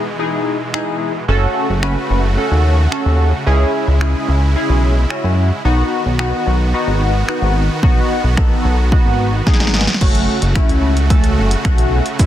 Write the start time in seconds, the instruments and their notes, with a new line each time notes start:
Already playing: supersaw synth B2 E3 G#3
0.19 analog polysynth D#4 E4 G#4
0.73 analog polysynth D#4 E4 G#4, finger snap
1.28 analog synth bass F#1, supersaw synth C#3 A3 F#4, analog polysynth C#4 F#4 A4
1.69 analog synth bass F#1
1.83 analog polysynth C#4 F#4 B4, finger snap
2.10 analog synth bass F#1
2.37 analog polysynth C#4 F#4 A4
2.51 analog synth bass D#2
2.92 analog polysynth C#4 F#4 A4, finger snap
3.06 analog synth bass D#2
3.46 analog synth bass C#2, supersaw synth G#3 E4, analog polysynth C#4 E4 G#4
3.88 analog synth bass C#2
4.01 analog polysynth C#4 E4 G#4, finger snap
4.28 analog synth bass C#2
4.56 analog polysynth C#4 E4 G#4
4.69 analog synth bass B1
5.10 analog polysynth C#4 E4 F#4, finger snap
5.24 analog synth bass F#2
5.65 analog synth bass B1, supersaw synth D#3 B3 F#4, analog polysynth B3 D#4 F#4
6.06 analog synth bass B1
6.19 analog polysynth B3 D#4 F#4, finger snap
6.47 analog synth bass B1
6.74 analog polysynth B3 D#4 F#4
6.88 analog synth bass G#1
7.28 analog polysynth B3 D#4 F#4, finger snap
7.42 analog synth bass G#1
7.83 analog synth bass B1, analog polysynth B3 D#4 F#4, kick
8.24 analog synth bass B1
8.37 analog polysynth B3 D#4 A4, finger snap, kick
8.65 analog synth bass B1
8.92 analog polysynth B3 D#4 F#4, kick
9.06 analog synth bass G#1
9.46 analog polysynth B3 D#4 G#4, kick, snare
9.53 snare
9.60 analog synth bass G#1, snare
9.67 snare
9.74 snare
9.81 snare
9.87 snare
9.94 snare
10.01 analog synth bass F#1, supersaw synth C#3 A3 F#4, analog polysynth A3 C#4 F#4, kick, closed hi-hat, crash
10.15 closed hi-hat
10.42 analog synth bass F#1, closed hi-hat
10.55 analog polysynth A3 C#4 E4, finger snap, kick, closed hi-hat
10.69 analog synth bass C#2, closed hi-hat
10.97 closed hi-hat
11.10 analog polysynth A3 C#4 A4, kick, closed hi-hat
11.24 closed hi-hat
11.38 analog synth bass F#1
11.51 closed hi-hat
11.65 analog synth bass B1, analog polysynth A3 C#4 F#4, finger snap, kick, closed hi-hat
11.78 closed hi-hat
12.06 closed hi-hat
12.19 analog synth bass C#2, analog polysynth G#3 C#4 E4, supersaw synth G#3 C#4, kick, closed hi-hat, shaker